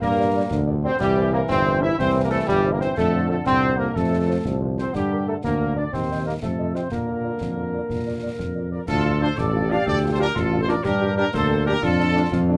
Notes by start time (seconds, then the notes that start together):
0.01 G2 G3 A#3 A#4, concert bass drum, snare
0.18 G4 A#4 D5
0.34 G4 A#4 D5
0.51 D2 D3, concert bass drum, snare
0.67 G4 A#4 D5
0.83 C4 G4 A#4 C5 D5
0.99 C2 E3 G3 G4, concert bass drum, snare, crash
1.17 E4 A#4 C5
1.33 A#3 E4 A#4 C5
1.49 G1 C4 C5, concert bass drum, snare
1.66 E4 A#4 C5
1.82 E4 A#4 C5 E5
1.98 C2 E3 C4 C5, concert bass drum, snare
2.14 E4 A#4 C5
2.23 A#3 A#4
2.30 A3 E4 A4 A#4 C5
2.47 G1 G3 G4, concert bass drum, snare
2.63 E4 A#4 C5
2.72 A#3 A#4
2.80 C4 E4 A#4 C5, snare
2.97 F2 D3 A3 A4, concert bass drum, snare
3.12 F4 A4 C5
3.29 A3 F4 A4 C5
3.46 C2 C4 C5, concert bass drum, snare
3.62 F4 A4 C5
3.78 A#3 F4 A4 A#4 C5
3.95 F2 C3 A3 A4, concert bass drum, snare
4.11 F4 A4 C5
4.28 F4 A4 C5
4.45 C2 F3, concert bass drum, snare
4.60 F4 A4 C5
4.78 C4 F4 A4 C5, snare
4.94 G2 D3 G3 G4, concert bass drum, snare, crash
5.11 A#4
5.27 A3 A4 A#4
5.44 D2 D3 A#3 A#4, concert bass drum, snare
5.60 A#4
5.77 D4 A#4 D5
5.93 D#2 D#3 C4 C5, concert bass drum, snare
6.10 G4 C5 D#5
6.26 A#3 G4 A#4 C5 D#5
6.42 F2 C3 A3 A4, concert bass drum, snare
6.59 F4 C5 D#5
6.74 C4 F4 C5 D#5, snare
6.91 A#2 D3 A#3 A#4, concert bass drum, snare
7.07 F4 A#4 D5
7.24 F4 A#4 D5
7.41 F2, concert bass drum, snare
7.56 F4 A#4 D5
7.73 F4 A#4 D5
7.90 A#2, concert bass drum, snare
8.05 F4 A#4 D5
8.22 F4 A#4 D5
8.39 F2, concert bass drum, snare
8.55 F4 A#4 D5
8.71 F4 A#4 D5
8.88 D2 F4 A4, concert bass drum, snare, crash
9.05 D4 F4
9.20 F3 D4 F4 A4 C5
9.37 A1 G4 A4 D5, concert bass drum, snare
9.54 D4 F4
9.70 F3 D4 F4 D5 F5
9.86 D2 A4 D5, concert bass drum, snare
10.03 D4 F4
10.11 A4 C5
10.19 F3 D4 F4 G4 A#4
10.35 A1 F4 A4, concert bass drum, snare
10.52 D4 F4
10.60 A4 C5
10.68 F3 D4 F4 A#4 D5, snare
10.84 G2 D4 G4 A#4, concert bass drum, snare, crash
11.01 D4 G4
11.17 G3 D4 G4 A#4
11.33 D2 A#3 A4 C5, concert bass drum, snare
11.49 D4 G4
11.66 G3 D4 G4 A#4
11.82 F2 D4 F4 A4, concert bass drum, snare
11.99 A3 D4
12.15 A3 D4
12.32 F2 F4, concert bass drum, snare
12.49 A3 D4